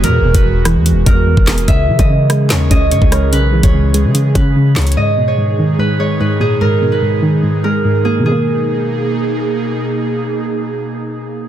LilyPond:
<<
  \new Staff \with { instrumentName = "Harp" } { \time 4/4 \key gis \minor \tempo 4 = 146 ais'8. b'4~ b'16 r8 ais'4 gis'8 | e''8. dis''4~ dis''16 cis''8 dis''8 cis''8 ais'8 | b'8. cis''4~ cis''16 r8 b'4 cis''8 | dis''8. cis''4~ cis''16 b'8 cis''8 b'8 gis'8 |
ais'8. b'4~ b'16 r8 ais'4 gis'8 | gis'2. r4 | r1 | }
  \new Staff \with { instrumentName = "Analog synth pad" } { \time 4/4 \key gis \minor <e gis fis'>1 | <e gis cis' gis'>1~ | <e gis cis' gis'>1 | <dis gis dis' gis'>1~ |
<dis gis dis' gis'>1 | <b, ais dis' gis'>1~ | <b, ais dis' gis'>1 | }
  \new Staff \with { instrumentName = "Synth pluck" } { \clef bass \time 4/4 \key gis \minor <e, gis b>8 b,8 e,8 e8 e,8 gis8 e,8 b8 | cis8 e8 cis8 gis8 cis8 cis'8 cis8 cis''8 | cis8 e8 cis8 gis8 cis8 cis'8 cis8 cis''8 | gis,8 b,8 gis,8 dis8 gis,8 gis8 gis,8 ais,8 |
gis,8 b,8 gis,8 dis8 gis,8 gis8 gis,8 ais8 | <b, dis gis ais>1~ | <b, dis gis ais>1 | }
  \new Staff \with { instrumentName = "808-style bass" } { \clef bass \time 4/4 \key gis \minor b,16. e,,16. e,,4 e,16. e,,16. e,8. e,,16 e,,8 | cis,8 cis16 cis4~ cis16 dis,8 cis,8 gis,16 cis,8. | b,,8. cis,4 cis8. cis4 cis,8 | r1 |
r1 | r1 | r1 | }
  \new DrumStaff \with { instrumentName = "Drums" } \drummode { \time 4/4 hh8. <hh bd>16 r8 <hh ss>8 hh8 <hh bd>8 r16 bd16 <hc hh sn>16 hh16 | <hh bd>8. <hh bd>16 r8 <hh ss>8 <hc hh sn>8 <hh bd>8 hh16 bd16 <hh ss>8 | hh8. <hh bd>16 r8 hh8 hh8 <hh bd>8 r8 <hc hh sn>32 hh32 hh32 hh32 | r4 r4 r4 r4 |
r4 r4 r4 r4 | r4 r4 r4 r4 | r4 r4 r4 r4 | }
>>